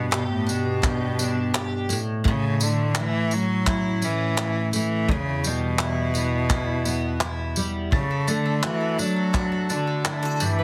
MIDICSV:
0, 0, Header, 1, 5, 480
1, 0, Start_track
1, 0, Key_signature, 2, "major"
1, 0, Tempo, 708634
1, 1523, Time_signature, 4, 2, 24, 8
1, 7205, End_track
2, 0, Start_track
2, 0, Title_t, "Mandolin"
2, 0, Program_c, 0, 25
2, 5369, Note_on_c, 0, 57, 86
2, 5491, Note_on_c, 0, 69, 68
2, 5607, Note_on_c, 0, 62, 64
2, 5720, Note_off_c, 0, 69, 0
2, 5728, Note_on_c, 0, 69, 66
2, 5842, Note_off_c, 0, 62, 0
2, 5845, Note_on_c, 0, 62, 67
2, 5957, Note_off_c, 0, 69, 0
2, 5965, Note_on_c, 0, 69, 63
2, 6083, Note_off_c, 0, 62, 0
2, 6086, Note_on_c, 0, 62, 64
2, 6199, Note_off_c, 0, 69, 0
2, 6207, Note_on_c, 0, 69, 59
2, 6316, Note_off_c, 0, 57, 0
2, 6324, Note_on_c, 0, 57, 86
2, 6439, Note_off_c, 0, 69, 0
2, 6447, Note_on_c, 0, 69, 66
2, 6565, Note_off_c, 0, 62, 0
2, 6567, Note_on_c, 0, 62, 65
2, 6679, Note_off_c, 0, 69, 0
2, 6687, Note_on_c, 0, 69, 69
2, 6802, Note_off_c, 0, 62, 0
2, 6805, Note_on_c, 0, 62, 67
2, 6919, Note_off_c, 0, 69, 0
2, 6927, Note_on_c, 0, 69, 70
2, 7044, Note_off_c, 0, 57, 0
2, 7050, Note_on_c, 0, 55, 92
2, 7094, Note_off_c, 0, 69, 0
2, 7171, Note_on_c, 0, 71, 73
2, 7205, Note_off_c, 0, 55, 0
2, 7205, Note_off_c, 0, 62, 0
2, 7205, Note_off_c, 0, 71, 0
2, 7205, End_track
3, 0, Start_track
3, 0, Title_t, "Steel-string acoustic guitar"
3, 0, Program_c, 1, 25
3, 0, Note_on_c, 1, 43, 97
3, 0, Note_on_c, 1, 59, 71
3, 0, Note_on_c, 1, 62, 63
3, 75, Note_on_c, 1, 67, 68
3, 312, Note_off_c, 1, 62, 0
3, 315, Note_on_c, 1, 62, 67
3, 547, Note_off_c, 1, 67, 0
3, 555, Note_on_c, 1, 67, 66
3, 796, Note_off_c, 1, 62, 0
3, 804, Note_on_c, 1, 62, 70
3, 1033, Note_off_c, 1, 67, 0
3, 1041, Note_on_c, 1, 67, 71
3, 1278, Note_off_c, 1, 43, 0
3, 1280, Note_on_c, 1, 45, 87
3, 1328, Note_off_c, 1, 59, 0
3, 1330, Note_off_c, 1, 67, 0
3, 1332, Note_off_c, 1, 62, 0
3, 1510, Note_off_c, 1, 45, 0
3, 1518, Note_on_c, 1, 45, 94
3, 1760, Note_on_c, 1, 57, 69
3, 2007, Note_on_c, 1, 64, 74
3, 2242, Note_on_c, 1, 61, 70
3, 2476, Note_off_c, 1, 64, 0
3, 2479, Note_on_c, 1, 64, 78
3, 2712, Note_off_c, 1, 61, 0
3, 2720, Note_on_c, 1, 61, 63
3, 2955, Note_off_c, 1, 64, 0
3, 2958, Note_on_c, 1, 64, 72
3, 3195, Note_off_c, 1, 57, 0
3, 3203, Note_on_c, 1, 57, 69
3, 3441, Note_off_c, 1, 45, 0
3, 3445, Note_on_c, 1, 40, 98
3, 3490, Note_off_c, 1, 61, 0
3, 3492, Note_off_c, 1, 57, 0
3, 3683, Note_on_c, 1, 55, 68
3, 3914, Note_off_c, 1, 64, 0
3, 3917, Note_on_c, 1, 64, 69
3, 4157, Note_on_c, 1, 59, 71
3, 4389, Note_off_c, 1, 64, 0
3, 4397, Note_on_c, 1, 64, 70
3, 4636, Note_off_c, 1, 59, 0
3, 4644, Note_on_c, 1, 59, 63
3, 4871, Note_off_c, 1, 64, 0
3, 4879, Note_on_c, 1, 64, 72
3, 5116, Note_off_c, 1, 55, 0
3, 5124, Note_on_c, 1, 55, 69
3, 5365, Note_off_c, 1, 40, 0
3, 5410, Note_off_c, 1, 64, 0
3, 5412, Note_off_c, 1, 55, 0
3, 5412, Note_off_c, 1, 59, 0
3, 5604, Note_on_c, 1, 57, 69
3, 5846, Note_on_c, 1, 66, 73
3, 6085, Note_on_c, 1, 62, 65
3, 6313, Note_off_c, 1, 66, 0
3, 6321, Note_on_c, 1, 66, 69
3, 6561, Note_off_c, 1, 62, 0
3, 6564, Note_on_c, 1, 62, 63
3, 6803, Note_off_c, 1, 66, 0
3, 6806, Note_on_c, 1, 64, 69
3, 6926, Note_off_c, 1, 64, 0
3, 6926, Note_on_c, 1, 66, 62
3, 7045, Note_on_c, 1, 43, 93
3, 7093, Note_off_c, 1, 57, 0
3, 7094, Note_off_c, 1, 66, 0
3, 7205, Note_off_c, 1, 43, 0
3, 7205, Note_off_c, 1, 62, 0
3, 7205, End_track
4, 0, Start_track
4, 0, Title_t, "Cello"
4, 0, Program_c, 2, 42
4, 0, Note_on_c, 2, 47, 106
4, 88, Note_off_c, 2, 47, 0
4, 93, Note_on_c, 2, 47, 90
4, 200, Note_off_c, 2, 47, 0
4, 223, Note_on_c, 2, 45, 92
4, 337, Note_on_c, 2, 47, 94
4, 348, Note_off_c, 2, 45, 0
4, 1290, Note_off_c, 2, 47, 0
4, 1542, Note_on_c, 2, 49, 111
4, 1782, Note_on_c, 2, 50, 106
4, 1792, Note_off_c, 2, 49, 0
4, 2021, Note_on_c, 2, 52, 118
4, 2031, Note_off_c, 2, 50, 0
4, 2262, Note_on_c, 2, 54, 127
4, 2272, Note_off_c, 2, 52, 0
4, 2739, Note_on_c, 2, 52, 110
4, 2749, Note_off_c, 2, 54, 0
4, 3211, Note_off_c, 2, 52, 0
4, 3226, Note_on_c, 2, 52, 99
4, 3465, Note_on_c, 2, 49, 112
4, 3475, Note_off_c, 2, 52, 0
4, 3703, Note_on_c, 2, 47, 104
4, 3713, Note_off_c, 2, 49, 0
4, 5134, Note_off_c, 2, 47, 0
4, 5368, Note_on_c, 2, 49, 102
4, 5616, Note_on_c, 2, 50, 101
4, 5626, Note_off_c, 2, 49, 0
4, 5851, Note_on_c, 2, 52, 106
4, 5861, Note_off_c, 2, 50, 0
4, 6089, Note_on_c, 2, 54, 120
4, 6099, Note_off_c, 2, 52, 0
4, 6575, Note_on_c, 2, 50, 99
4, 6586, Note_off_c, 2, 54, 0
4, 7059, Note_on_c, 2, 52, 115
4, 7069, Note_off_c, 2, 50, 0
4, 7205, Note_off_c, 2, 52, 0
4, 7205, End_track
5, 0, Start_track
5, 0, Title_t, "Drums"
5, 86, Note_on_c, 9, 39, 127
5, 153, Note_off_c, 9, 39, 0
5, 332, Note_on_c, 9, 54, 61
5, 399, Note_off_c, 9, 54, 0
5, 564, Note_on_c, 9, 36, 122
5, 568, Note_on_c, 9, 39, 86
5, 632, Note_off_c, 9, 36, 0
5, 636, Note_off_c, 9, 39, 0
5, 806, Note_on_c, 9, 54, 69
5, 874, Note_off_c, 9, 54, 0
5, 1048, Note_on_c, 9, 39, 119
5, 1116, Note_off_c, 9, 39, 0
5, 1288, Note_on_c, 9, 54, 77
5, 1355, Note_off_c, 9, 54, 0
5, 1525, Note_on_c, 9, 36, 117
5, 1593, Note_off_c, 9, 36, 0
5, 1765, Note_on_c, 9, 54, 81
5, 1833, Note_off_c, 9, 54, 0
5, 1999, Note_on_c, 9, 39, 127
5, 2067, Note_off_c, 9, 39, 0
5, 2243, Note_on_c, 9, 54, 62
5, 2311, Note_off_c, 9, 54, 0
5, 2483, Note_on_c, 9, 36, 121
5, 2485, Note_on_c, 9, 39, 96
5, 2551, Note_off_c, 9, 36, 0
5, 2553, Note_off_c, 9, 39, 0
5, 2724, Note_on_c, 9, 54, 70
5, 2792, Note_off_c, 9, 54, 0
5, 2966, Note_on_c, 9, 39, 119
5, 3034, Note_off_c, 9, 39, 0
5, 3205, Note_on_c, 9, 54, 78
5, 3273, Note_off_c, 9, 54, 0
5, 3445, Note_on_c, 9, 36, 113
5, 3513, Note_off_c, 9, 36, 0
5, 3687, Note_on_c, 9, 54, 77
5, 3755, Note_off_c, 9, 54, 0
5, 3921, Note_on_c, 9, 39, 110
5, 3989, Note_off_c, 9, 39, 0
5, 4164, Note_on_c, 9, 54, 61
5, 4232, Note_off_c, 9, 54, 0
5, 4403, Note_on_c, 9, 36, 121
5, 4404, Note_on_c, 9, 39, 91
5, 4471, Note_off_c, 9, 36, 0
5, 4472, Note_off_c, 9, 39, 0
5, 4642, Note_on_c, 9, 54, 65
5, 4710, Note_off_c, 9, 54, 0
5, 4882, Note_on_c, 9, 39, 122
5, 4949, Note_off_c, 9, 39, 0
5, 5121, Note_on_c, 9, 54, 72
5, 5189, Note_off_c, 9, 54, 0
5, 5365, Note_on_c, 9, 36, 117
5, 5433, Note_off_c, 9, 36, 0
5, 5608, Note_on_c, 9, 54, 79
5, 5675, Note_off_c, 9, 54, 0
5, 5847, Note_on_c, 9, 39, 109
5, 5915, Note_off_c, 9, 39, 0
5, 6090, Note_on_c, 9, 54, 62
5, 6158, Note_off_c, 9, 54, 0
5, 6326, Note_on_c, 9, 36, 117
5, 6330, Note_on_c, 9, 39, 94
5, 6393, Note_off_c, 9, 36, 0
5, 6397, Note_off_c, 9, 39, 0
5, 6569, Note_on_c, 9, 54, 68
5, 6636, Note_off_c, 9, 54, 0
5, 6808, Note_on_c, 9, 39, 122
5, 6876, Note_off_c, 9, 39, 0
5, 7046, Note_on_c, 9, 54, 77
5, 7113, Note_off_c, 9, 54, 0
5, 7205, End_track
0, 0, End_of_file